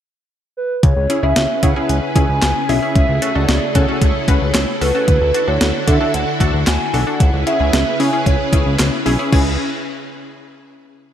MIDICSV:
0, 0, Header, 1, 6, 480
1, 0, Start_track
1, 0, Tempo, 530973
1, 751, Time_signature, 4, 2, 24, 8
1, 10065, End_track
2, 0, Start_track
2, 0, Title_t, "Soft synth lead"
2, 0, Program_c, 0, 80
2, 515, Note_on_c, 0, 71, 95
2, 736, Note_off_c, 0, 71, 0
2, 755, Note_on_c, 0, 73, 100
2, 1116, Note_on_c, 0, 76, 102
2, 1130, Note_off_c, 0, 73, 0
2, 1474, Note_off_c, 0, 76, 0
2, 1478, Note_on_c, 0, 78, 103
2, 1639, Note_off_c, 0, 78, 0
2, 1651, Note_on_c, 0, 81, 81
2, 1717, Note_on_c, 0, 80, 117
2, 1730, Note_off_c, 0, 81, 0
2, 2430, Note_off_c, 0, 80, 0
2, 2436, Note_on_c, 0, 76, 113
2, 3035, Note_on_c, 0, 74, 102
2, 3049, Note_off_c, 0, 76, 0
2, 3386, Note_off_c, 0, 74, 0
2, 3392, Note_on_c, 0, 73, 94
2, 3615, Note_off_c, 0, 73, 0
2, 3632, Note_on_c, 0, 73, 100
2, 4316, Note_off_c, 0, 73, 0
2, 4353, Note_on_c, 0, 71, 103
2, 4954, Note_on_c, 0, 73, 94
2, 4968, Note_off_c, 0, 71, 0
2, 5310, Note_off_c, 0, 73, 0
2, 5315, Note_on_c, 0, 76, 95
2, 5536, Note_off_c, 0, 76, 0
2, 5554, Note_on_c, 0, 78, 102
2, 6034, Note_on_c, 0, 80, 104
2, 6048, Note_off_c, 0, 78, 0
2, 6388, Note_off_c, 0, 80, 0
2, 6394, Note_on_c, 0, 78, 97
2, 6727, Note_off_c, 0, 78, 0
2, 6751, Note_on_c, 0, 76, 98
2, 7230, Note_on_c, 0, 80, 96
2, 7243, Note_off_c, 0, 76, 0
2, 7465, Note_off_c, 0, 80, 0
2, 7470, Note_on_c, 0, 73, 82
2, 7917, Note_off_c, 0, 73, 0
2, 10065, End_track
3, 0, Start_track
3, 0, Title_t, "Analog polysynth"
3, 0, Program_c, 1, 90
3, 991, Note_on_c, 1, 64, 74
3, 992, Note_on_c, 1, 61, 80
3, 992, Note_on_c, 1, 68, 90
3, 1091, Note_off_c, 1, 61, 0
3, 1091, Note_off_c, 1, 64, 0
3, 1091, Note_off_c, 1, 68, 0
3, 1112, Note_on_c, 1, 64, 60
3, 1113, Note_on_c, 1, 61, 69
3, 1113, Note_on_c, 1, 68, 73
3, 1311, Note_off_c, 1, 61, 0
3, 1311, Note_off_c, 1, 64, 0
3, 1311, Note_off_c, 1, 68, 0
3, 1473, Note_on_c, 1, 61, 76
3, 1473, Note_on_c, 1, 64, 70
3, 1473, Note_on_c, 1, 68, 85
3, 1571, Note_off_c, 1, 61, 0
3, 1571, Note_off_c, 1, 64, 0
3, 1571, Note_off_c, 1, 68, 0
3, 1593, Note_on_c, 1, 61, 71
3, 1593, Note_on_c, 1, 64, 64
3, 1593, Note_on_c, 1, 68, 79
3, 1791, Note_off_c, 1, 61, 0
3, 1791, Note_off_c, 1, 64, 0
3, 1791, Note_off_c, 1, 68, 0
3, 1952, Note_on_c, 1, 61, 78
3, 1952, Note_on_c, 1, 64, 69
3, 1952, Note_on_c, 1, 68, 86
3, 2150, Note_off_c, 1, 68, 0
3, 2151, Note_off_c, 1, 61, 0
3, 2151, Note_off_c, 1, 64, 0
3, 2431, Note_on_c, 1, 61, 80
3, 2431, Note_on_c, 1, 64, 73
3, 2432, Note_on_c, 1, 68, 88
3, 2531, Note_off_c, 1, 61, 0
3, 2531, Note_off_c, 1, 64, 0
3, 2531, Note_off_c, 1, 68, 0
3, 2552, Note_on_c, 1, 61, 72
3, 2552, Note_on_c, 1, 64, 65
3, 2552, Note_on_c, 1, 68, 78
3, 2672, Note_off_c, 1, 61, 0
3, 2672, Note_off_c, 1, 64, 0
3, 2672, Note_off_c, 1, 68, 0
3, 2911, Note_on_c, 1, 61, 79
3, 2911, Note_on_c, 1, 66, 70
3, 2911, Note_on_c, 1, 69, 83
3, 3010, Note_off_c, 1, 61, 0
3, 3010, Note_off_c, 1, 69, 0
3, 3011, Note_off_c, 1, 66, 0
3, 3031, Note_on_c, 1, 61, 69
3, 3031, Note_on_c, 1, 69, 76
3, 3032, Note_on_c, 1, 66, 60
3, 3230, Note_off_c, 1, 61, 0
3, 3230, Note_off_c, 1, 66, 0
3, 3230, Note_off_c, 1, 69, 0
3, 3390, Note_on_c, 1, 66, 72
3, 3391, Note_on_c, 1, 61, 80
3, 3391, Note_on_c, 1, 69, 87
3, 3490, Note_off_c, 1, 61, 0
3, 3490, Note_off_c, 1, 66, 0
3, 3491, Note_off_c, 1, 69, 0
3, 3511, Note_on_c, 1, 61, 72
3, 3512, Note_on_c, 1, 66, 65
3, 3512, Note_on_c, 1, 69, 77
3, 3710, Note_off_c, 1, 61, 0
3, 3710, Note_off_c, 1, 66, 0
3, 3710, Note_off_c, 1, 69, 0
3, 3870, Note_on_c, 1, 66, 72
3, 3871, Note_on_c, 1, 61, 80
3, 3871, Note_on_c, 1, 71, 85
3, 4070, Note_off_c, 1, 61, 0
3, 4070, Note_off_c, 1, 66, 0
3, 4070, Note_off_c, 1, 71, 0
3, 4351, Note_on_c, 1, 61, 80
3, 4351, Note_on_c, 1, 66, 73
3, 4352, Note_on_c, 1, 69, 88
3, 4451, Note_off_c, 1, 61, 0
3, 4451, Note_off_c, 1, 66, 0
3, 4451, Note_off_c, 1, 69, 0
3, 4472, Note_on_c, 1, 61, 72
3, 4472, Note_on_c, 1, 66, 67
3, 4473, Note_on_c, 1, 69, 80
3, 4592, Note_off_c, 1, 61, 0
3, 4592, Note_off_c, 1, 66, 0
3, 4592, Note_off_c, 1, 69, 0
3, 4831, Note_on_c, 1, 69, 89
3, 4832, Note_on_c, 1, 62, 77
3, 4832, Note_on_c, 1, 66, 69
3, 4931, Note_off_c, 1, 62, 0
3, 4931, Note_off_c, 1, 66, 0
3, 4931, Note_off_c, 1, 69, 0
3, 4950, Note_on_c, 1, 62, 68
3, 4950, Note_on_c, 1, 69, 74
3, 4951, Note_on_c, 1, 66, 62
3, 5149, Note_off_c, 1, 69, 0
3, 5150, Note_off_c, 1, 62, 0
3, 5150, Note_off_c, 1, 66, 0
3, 5310, Note_on_c, 1, 62, 78
3, 5310, Note_on_c, 1, 66, 74
3, 5310, Note_on_c, 1, 69, 86
3, 5410, Note_off_c, 1, 62, 0
3, 5410, Note_off_c, 1, 66, 0
3, 5410, Note_off_c, 1, 69, 0
3, 5429, Note_on_c, 1, 62, 70
3, 5429, Note_on_c, 1, 66, 66
3, 5429, Note_on_c, 1, 69, 81
3, 5629, Note_off_c, 1, 62, 0
3, 5629, Note_off_c, 1, 66, 0
3, 5629, Note_off_c, 1, 69, 0
3, 5791, Note_on_c, 1, 62, 79
3, 5791, Note_on_c, 1, 66, 71
3, 5791, Note_on_c, 1, 69, 86
3, 5990, Note_off_c, 1, 62, 0
3, 5990, Note_off_c, 1, 66, 0
3, 5990, Note_off_c, 1, 69, 0
3, 6270, Note_on_c, 1, 69, 87
3, 6271, Note_on_c, 1, 62, 81
3, 6271, Note_on_c, 1, 66, 73
3, 6370, Note_off_c, 1, 66, 0
3, 6370, Note_off_c, 1, 69, 0
3, 6371, Note_off_c, 1, 62, 0
3, 6390, Note_on_c, 1, 62, 70
3, 6390, Note_on_c, 1, 66, 66
3, 6390, Note_on_c, 1, 69, 78
3, 6511, Note_off_c, 1, 62, 0
3, 6511, Note_off_c, 1, 66, 0
3, 6511, Note_off_c, 1, 69, 0
3, 6749, Note_on_c, 1, 61, 77
3, 6750, Note_on_c, 1, 64, 70
3, 6750, Note_on_c, 1, 68, 86
3, 6850, Note_off_c, 1, 61, 0
3, 6850, Note_off_c, 1, 64, 0
3, 6850, Note_off_c, 1, 68, 0
3, 6868, Note_on_c, 1, 61, 71
3, 6869, Note_on_c, 1, 64, 61
3, 6869, Note_on_c, 1, 68, 77
3, 7069, Note_off_c, 1, 61, 0
3, 7069, Note_off_c, 1, 64, 0
3, 7069, Note_off_c, 1, 68, 0
3, 7229, Note_on_c, 1, 61, 80
3, 7229, Note_on_c, 1, 64, 73
3, 7229, Note_on_c, 1, 68, 87
3, 7329, Note_off_c, 1, 61, 0
3, 7329, Note_off_c, 1, 64, 0
3, 7330, Note_off_c, 1, 68, 0
3, 7348, Note_on_c, 1, 64, 65
3, 7348, Note_on_c, 1, 68, 78
3, 7349, Note_on_c, 1, 61, 72
3, 7548, Note_off_c, 1, 64, 0
3, 7549, Note_off_c, 1, 61, 0
3, 7549, Note_off_c, 1, 68, 0
3, 7709, Note_on_c, 1, 64, 71
3, 7709, Note_on_c, 1, 68, 84
3, 7710, Note_on_c, 1, 61, 79
3, 7909, Note_off_c, 1, 61, 0
3, 7909, Note_off_c, 1, 64, 0
3, 7909, Note_off_c, 1, 68, 0
3, 8188, Note_on_c, 1, 61, 96
3, 8188, Note_on_c, 1, 64, 85
3, 8188, Note_on_c, 1, 68, 107
3, 8289, Note_off_c, 1, 61, 0
3, 8289, Note_off_c, 1, 64, 0
3, 8289, Note_off_c, 1, 68, 0
3, 8308, Note_on_c, 1, 61, 84
3, 8308, Note_on_c, 1, 64, 77
3, 8308, Note_on_c, 1, 68, 93
3, 8417, Note_off_c, 1, 61, 0
3, 8417, Note_off_c, 1, 64, 0
3, 8417, Note_off_c, 1, 68, 0
3, 8428, Note_on_c, 1, 61, 84
3, 8428, Note_on_c, 1, 64, 78
3, 8428, Note_on_c, 1, 68, 94
3, 8652, Note_off_c, 1, 61, 0
3, 8653, Note_off_c, 1, 64, 0
3, 8653, Note_off_c, 1, 68, 0
3, 10065, End_track
4, 0, Start_track
4, 0, Title_t, "String machine"
4, 0, Program_c, 2, 50
4, 750, Note_on_c, 2, 68, 76
4, 751, Note_on_c, 2, 49, 83
4, 751, Note_on_c, 2, 64, 73
4, 751, Note_on_c, 2, 71, 90
4, 752, Note_on_c, 2, 61, 76
4, 2652, Note_off_c, 2, 61, 0
4, 2652, Note_off_c, 2, 71, 0
4, 2670, Note_on_c, 2, 57, 72
4, 2671, Note_on_c, 2, 69, 88
4, 4555, Note_off_c, 2, 49, 0
4, 4555, Note_off_c, 2, 68, 0
4, 4572, Note_off_c, 2, 57, 0
4, 4572, Note_off_c, 2, 69, 0
4, 4589, Note_on_c, 2, 50, 83
4, 4589, Note_on_c, 2, 62, 76
4, 4589, Note_on_c, 2, 66, 75
4, 4589, Note_on_c, 2, 69, 87
4, 6491, Note_off_c, 2, 50, 0
4, 6491, Note_off_c, 2, 62, 0
4, 6491, Note_off_c, 2, 66, 0
4, 6491, Note_off_c, 2, 69, 0
4, 6509, Note_on_c, 2, 49, 80
4, 6509, Note_on_c, 2, 61, 78
4, 6509, Note_on_c, 2, 68, 73
4, 6510, Note_on_c, 2, 71, 90
4, 8395, Note_off_c, 2, 64, 0
4, 8411, Note_off_c, 2, 49, 0
4, 8411, Note_off_c, 2, 61, 0
4, 8411, Note_off_c, 2, 68, 0
4, 8411, Note_off_c, 2, 71, 0
4, 8429, Note_on_c, 2, 49, 70
4, 8429, Note_on_c, 2, 68, 68
4, 8429, Note_on_c, 2, 71, 81
4, 8430, Note_on_c, 2, 61, 66
4, 8430, Note_on_c, 2, 64, 64
4, 8653, Note_off_c, 2, 49, 0
4, 8653, Note_off_c, 2, 68, 0
4, 8653, Note_off_c, 2, 71, 0
4, 8654, Note_off_c, 2, 61, 0
4, 8654, Note_off_c, 2, 64, 0
4, 10065, End_track
5, 0, Start_track
5, 0, Title_t, "Analog synth bass"
5, 0, Program_c, 3, 38
5, 753, Note_on_c, 3, 37, 114
5, 850, Note_off_c, 3, 37, 0
5, 872, Note_on_c, 3, 37, 91
5, 970, Note_off_c, 3, 37, 0
5, 1111, Note_on_c, 3, 37, 92
5, 1209, Note_off_c, 3, 37, 0
5, 1232, Note_on_c, 3, 37, 105
5, 1330, Note_off_c, 3, 37, 0
5, 1473, Note_on_c, 3, 49, 103
5, 1570, Note_off_c, 3, 49, 0
5, 1712, Note_on_c, 3, 37, 100
5, 1810, Note_off_c, 3, 37, 0
5, 1949, Note_on_c, 3, 37, 112
5, 2048, Note_off_c, 3, 37, 0
5, 2072, Note_on_c, 3, 37, 103
5, 2170, Note_off_c, 3, 37, 0
5, 2194, Note_on_c, 3, 37, 103
5, 2291, Note_off_c, 3, 37, 0
5, 2432, Note_on_c, 3, 35, 91
5, 2530, Note_off_c, 3, 35, 0
5, 2672, Note_on_c, 3, 37, 101
5, 2770, Note_off_c, 3, 37, 0
5, 2793, Note_on_c, 3, 37, 101
5, 2890, Note_off_c, 3, 37, 0
5, 3033, Note_on_c, 3, 37, 96
5, 3131, Note_off_c, 3, 37, 0
5, 3153, Note_on_c, 3, 37, 115
5, 3250, Note_off_c, 3, 37, 0
5, 3393, Note_on_c, 3, 49, 98
5, 3490, Note_off_c, 3, 49, 0
5, 3630, Note_on_c, 3, 37, 108
5, 3728, Note_off_c, 3, 37, 0
5, 3868, Note_on_c, 3, 37, 104
5, 3967, Note_off_c, 3, 37, 0
5, 3993, Note_on_c, 3, 37, 99
5, 4090, Note_off_c, 3, 37, 0
5, 4113, Note_on_c, 3, 37, 102
5, 4210, Note_off_c, 3, 37, 0
5, 4352, Note_on_c, 3, 37, 91
5, 4450, Note_off_c, 3, 37, 0
5, 4592, Note_on_c, 3, 38, 103
5, 4690, Note_off_c, 3, 38, 0
5, 4713, Note_on_c, 3, 38, 105
5, 4810, Note_off_c, 3, 38, 0
5, 4952, Note_on_c, 3, 38, 99
5, 5050, Note_off_c, 3, 38, 0
5, 5073, Note_on_c, 3, 38, 108
5, 5170, Note_off_c, 3, 38, 0
5, 5312, Note_on_c, 3, 50, 101
5, 5410, Note_off_c, 3, 50, 0
5, 5552, Note_on_c, 3, 38, 103
5, 5650, Note_off_c, 3, 38, 0
5, 5789, Note_on_c, 3, 38, 98
5, 5888, Note_off_c, 3, 38, 0
5, 5912, Note_on_c, 3, 38, 98
5, 6010, Note_off_c, 3, 38, 0
5, 6032, Note_on_c, 3, 38, 105
5, 6130, Note_off_c, 3, 38, 0
5, 6271, Note_on_c, 3, 35, 90
5, 6369, Note_off_c, 3, 35, 0
5, 6511, Note_on_c, 3, 37, 100
5, 6609, Note_off_c, 3, 37, 0
5, 6631, Note_on_c, 3, 37, 101
5, 6729, Note_off_c, 3, 37, 0
5, 6871, Note_on_c, 3, 37, 99
5, 6969, Note_off_c, 3, 37, 0
5, 6991, Note_on_c, 3, 37, 100
5, 7089, Note_off_c, 3, 37, 0
5, 7231, Note_on_c, 3, 49, 97
5, 7329, Note_off_c, 3, 49, 0
5, 7469, Note_on_c, 3, 37, 107
5, 7568, Note_off_c, 3, 37, 0
5, 7708, Note_on_c, 3, 37, 95
5, 7807, Note_off_c, 3, 37, 0
5, 7830, Note_on_c, 3, 37, 94
5, 7929, Note_off_c, 3, 37, 0
5, 7950, Note_on_c, 3, 37, 113
5, 8049, Note_off_c, 3, 37, 0
5, 8191, Note_on_c, 3, 35, 94
5, 8289, Note_off_c, 3, 35, 0
5, 8431, Note_on_c, 3, 37, 105
5, 8654, Note_off_c, 3, 37, 0
5, 10065, End_track
6, 0, Start_track
6, 0, Title_t, "Drums"
6, 752, Note_on_c, 9, 42, 65
6, 753, Note_on_c, 9, 36, 119
6, 843, Note_off_c, 9, 36, 0
6, 843, Note_off_c, 9, 42, 0
6, 993, Note_on_c, 9, 42, 75
6, 1083, Note_off_c, 9, 42, 0
6, 1231, Note_on_c, 9, 38, 109
6, 1231, Note_on_c, 9, 42, 80
6, 1321, Note_off_c, 9, 42, 0
6, 1322, Note_off_c, 9, 38, 0
6, 1472, Note_on_c, 9, 42, 83
6, 1473, Note_on_c, 9, 36, 88
6, 1562, Note_off_c, 9, 42, 0
6, 1563, Note_off_c, 9, 36, 0
6, 1712, Note_on_c, 9, 42, 74
6, 1803, Note_off_c, 9, 42, 0
6, 1949, Note_on_c, 9, 36, 91
6, 1952, Note_on_c, 9, 42, 86
6, 2040, Note_off_c, 9, 36, 0
6, 2042, Note_off_c, 9, 42, 0
6, 2191, Note_on_c, 9, 38, 109
6, 2191, Note_on_c, 9, 39, 87
6, 2192, Note_on_c, 9, 42, 75
6, 2281, Note_off_c, 9, 38, 0
6, 2281, Note_off_c, 9, 39, 0
6, 2283, Note_off_c, 9, 42, 0
6, 2434, Note_on_c, 9, 46, 66
6, 2525, Note_off_c, 9, 46, 0
6, 2671, Note_on_c, 9, 42, 68
6, 2672, Note_on_c, 9, 36, 122
6, 2762, Note_off_c, 9, 36, 0
6, 2762, Note_off_c, 9, 42, 0
6, 2911, Note_on_c, 9, 42, 77
6, 3002, Note_off_c, 9, 42, 0
6, 3151, Note_on_c, 9, 38, 107
6, 3151, Note_on_c, 9, 42, 79
6, 3241, Note_off_c, 9, 42, 0
6, 3242, Note_off_c, 9, 38, 0
6, 3391, Note_on_c, 9, 42, 81
6, 3392, Note_on_c, 9, 36, 89
6, 3481, Note_off_c, 9, 42, 0
6, 3483, Note_off_c, 9, 36, 0
6, 3630, Note_on_c, 9, 36, 92
6, 3630, Note_on_c, 9, 42, 77
6, 3720, Note_off_c, 9, 36, 0
6, 3721, Note_off_c, 9, 42, 0
6, 3869, Note_on_c, 9, 36, 88
6, 3872, Note_on_c, 9, 42, 83
6, 3959, Note_off_c, 9, 36, 0
6, 3962, Note_off_c, 9, 42, 0
6, 4109, Note_on_c, 9, 38, 108
6, 4109, Note_on_c, 9, 39, 87
6, 4110, Note_on_c, 9, 42, 73
6, 4199, Note_off_c, 9, 38, 0
6, 4199, Note_off_c, 9, 39, 0
6, 4201, Note_off_c, 9, 42, 0
6, 4353, Note_on_c, 9, 46, 68
6, 4443, Note_off_c, 9, 46, 0
6, 4591, Note_on_c, 9, 42, 67
6, 4592, Note_on_c, 9, 36, 119
6, 4681, Note_off_c, 9, 42, 0
6, 4682, Note_off_c, 9, 36, 0
6, 4831, Note_on_c, 9, 42, 79
6, 4922, Note_off_c, 9, 42, 0
6, 5071, Note_on_c, 9, 38, 110
6, 5071, Note_on_c, 9, 42, 83
6, 5161, Note_off_c, 9, 42, 0
6, 5162, Note_off_c, 9, 38, 0
6, 5312, Note_on_c, 9, 36, 86
6, 5312, Note_on_c, 9, 42, 82
6, 5402, Note_off_c, 9, 42, 0
6, 5403, Note_off_c, 9, 36, 0
6, 5552, Note_on_c, 9, 42, 75
6, 5642, Note_off_c, 9, 42, 0
6, 5788, Note_on_c, 9, 36, 91
6, 5791, Note_on_c, 9, 42, 82
6, 5879, Note_off_c, 9, 36, 0
6, 5882, Note_off_c, 9, 42, 0
6, 6030, Note_on_c, 9, 38, 105
6, 6030, Note_on_c, 9, 39, 90
6, 6031, Note_on_c, 9, 42, 74
6, 6120, Note_off_c, 9, 38, 0
6, 6120, Note_off_c, 9, 39, 0
6, 6122, Note_off_c, 9, 42, 0
6, 6274, Note_on_c, 9, 46, 65
6, 6365, Note_off_c, 9, 46, 0
6, 6511, Note_on_c, 9, 42, 66
6, 6512, Note_on_c, 9, 36, 117
6, 6602, Note_off_c, 9, 36, 0
6, 6602, Note_off_c, 9, 42, 0
6, 6751, Note_on_c, 9, 42, 75
6, 6842, Note_off_c, 9, 42, 0
6, 6991, Note_on_c, 9, 42, 83
6, 6992, Note_on_c, 9, 38, 109
6, 7082, Note_off_c, 9, 38, 0
6, 7082, Note_off_c, 9, 42, 0
6, 7232, Note_on_c, 9, 46, 61
6, 7322, Note_off_c, 9, 46, 0
6, 7470, Note_on_c, 9, 36, 92
6, 7472, Note_on_c, 9, 42, 75
6, 7560, Note_off_c, 9, 36, 0
6, 7562, Note_off_c, 9, 42, 0
6, 7708, Note_on_c, 9, 36, 94
6, 7711, Note_on_c, 9, 42, 84
6, 7799, Note_off_c, 9, 36, 0
6, 7802, Note_off_c, 9, 42, 0
6, 7949, Note_on_c, 9, 38, 105
6, 7949, Note_on_c, 9, 39, 89
6, 7951, Note_on_c, 9, 42, 77
6, 8040, Note_off_c, 9, 38, 0
6, 8040, Note_off_c, 9, 39, 0
6, 8041, Note_off_c, 9, 42, 0
6, 8193, Note_on_c, 9, 46, 66
6, 8284, Note_off_c, 9, 46, 0
6, 8431, Note_on_c, 9, 36, 106
6, 8431, Note_on_c, 9, 49, 89
6, 8521, Note_off_c, 9, 36, 0
6, 8521, Note_off_c, 9, 49, 0
6, 10065, End_track
0, 0, End_of_file